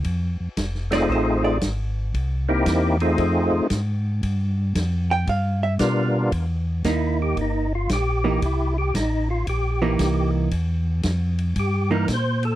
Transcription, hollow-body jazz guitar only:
X:1
M:4/4
L:1/8
Q:"Swing" 1/4=115
K:F
V:1 name="Hollow-body jazz guitar"
z3 d c d z2 | z8 | z3 g f e z2 | z2 [B,^D]3 z2 [E,B,D] |
z4 z [E,B,^D]3 | z4 z [E,B,^D] z2 |]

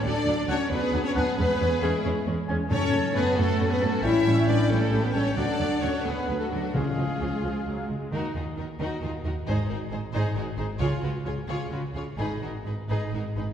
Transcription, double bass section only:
X:1
M:6/8
L:1/8
Q:3/8=89
K:C#phr
V:1 name="Double bass section" clef=bass
D,, D,, D,, D,, D,, D,, | E,, E,, E,, E,, E,, E,, | F,, F,, F,, F,, F,, F,, | A,,, A,,, A,,, A,,, A,,, A,,, |
D,, D,, D,, D,, D,, D,, | C,, C,, C,, C,, C,, C,, | [K:Ebm] E,, E,, E,, E,, E,, E,, | A,,, A,,, A,,, A,,, A,,, A,,, |
D,, D,, D,, D,, D,, D,, | A,,, A,,, A,,, A,,, A,,, A,,, |]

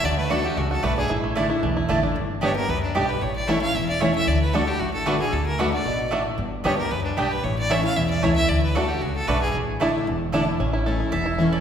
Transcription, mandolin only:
X:1
M:4/4
L:1/8
Q:1/4=228
K:Amix
V:1 name="Mandolin"
z2 [A,Fda] z3 [A,Fda] z | z2 [A,Eda] z3 [A,Eda] z | z2 [B,Gda] z3 [B,Gda] z | z2 [A,Eca] z3 [A,Eca] z |
z2 [A,Fda] z3 [A,Fda] z | z2 [A,Fda] z3 [A,Fda] z | z2 [B,Gda] z3 [B,Gda] z | z2 [A,Eca] z3 [A,Eca] z |
z2 [A,Fda] z3 [A,Fda] z | z2 [A,Eda] z3 [A,Eda] z | z4 e3 d |]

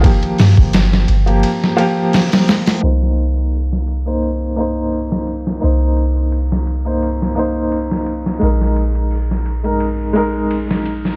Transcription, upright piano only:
X:1
M:4/4
L:1/16
Q:"Swing 16ths" 1/4=86
K:Cm
V:1 name="Upright piano"
[F,B,G]6- [F,B,G] [F,B,G] z2 [F,B,G]6 | [B,Ec]6- [B,Ec] [B,Ec] z2 [B,Ec]6 | [B,Ec]6- [B,Ec] [B,Ec] z2 [B,Ec]6 | [A,EB]6- [A,EB] [A,EB] z2 [A,EB]6 |]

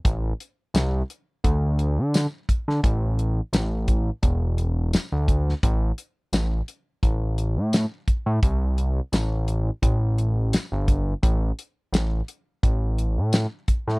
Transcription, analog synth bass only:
X:1
M:4/4
L:1/16
Q:"Swing 16ths" 1/4=86
K:Am
V:1 name="Analog synth bass" clef=bass
A,,,2 z2 C,,2 z2 D,,3 D,2 z2 D, | A,,,4 A,,,4 E,,,4- E,,, D,,3 | A,,,2 z2 A,,,2 z2 A,,,3 A,,2 z2 A,, | C,,4 A,,,4 A,,,4- A,,, G,,,3 |
A,,,2 z2 A,,,2 z2 A,,,3 A,,2 z2 A,, |]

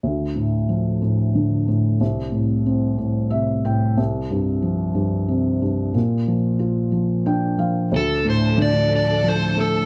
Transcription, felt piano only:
X:1
M:6/8
L:1/8
Q:3/8=61
K:Dm
V:1 name="Felt piano" clef=bass
D,, A,, F, A,, D, A,, | C,, A,, C A,, [C,e] [A,,g] | C,, G,, F, G,, C, G,, | B,, F, F F, [Dg] [F,f] |
D,, A,, D,2 F, A, |]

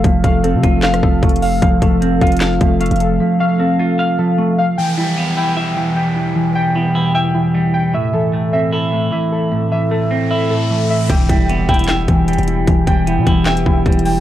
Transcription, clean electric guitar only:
X:1
M:4/4
L:1/8
Q:1/4=152
K:Ephr
V:1 name="Clean electric guitar"
[F,A,f] A, C F f F, A,2 | F, A, C F f F, A,2 | F, A, C F f F, A,2 | E, G, B, E e E, G,2 |
E, G, B, E e E, G,2 | A,, E, A, C E A,, E,2 | A,, E, A, C E A,, E,2 | E, G, B, E e E, G,2 |
E, G, B, E e E, G,2 |]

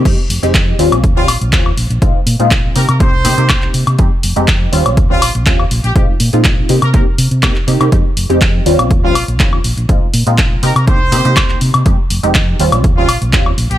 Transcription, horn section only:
X:1
M:4/4
L:1/16
Q:1/4=122
K:Fm
V:1 name="Horn section"
z8 z F2 z4 z | z6 B B c6 z2 | z8 z F2 z4 G | G z6 B B z6 z |
z8 z F2 z4 z | z6 B B c6 z2 | z8 z F2 z4 G |]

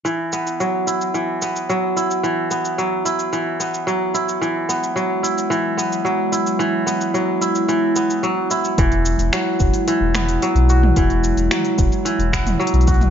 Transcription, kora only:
X:1
M:4/4
L:1/8
Q:1/4=110
K:E
V:1 name="Kora" clef=bass
E, B, F, E E, B, F, E | E, B, F, E E, B, F, E | E, B, F, E E, B, F, E | E, B, F, E E, B, F, E |
E,2 F,2 E, B, F, F | E,2 F,2 E, B, F, F |]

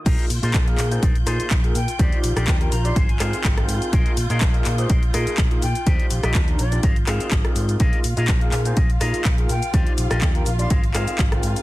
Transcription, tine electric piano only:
X:1
M:4/4
L:1/16
Q:"Swing 16ths" 1/4=124
K:Bbmix
V:1 name="Tine electric piano"
[B,EFAB]2 z [B,EFAB]2 [B,EFAB]2 [B,EFAc] z2 [B,EFAB]2 z [B,EFAB] z2 | [EFGcd]3 [DEFGB] z [DEFGB] z [DEFGd] z2 [CEFAB]3 [CEFAB]3 | z3 [B,EFAB]2 [B,EFAB]2 [B,EFAc] z2 [B,EFAB]2 z [B,EFAB] z2 | [EFGc]3 [DEFGB] z [DEFGB] z [DEFGd] z2 [CEFAB]3 [CEFAB]3 |
F2 z [B,EFAB]2 [B,EFAB]2 [B,EFAc] z2 [B,EFAB]2 z [B,EFAB] z2 | [EFGc]3 [DEFGB] z [DEFGB] z [DEFGd] z2 [CEFAB]3 [CEFAB]3 |]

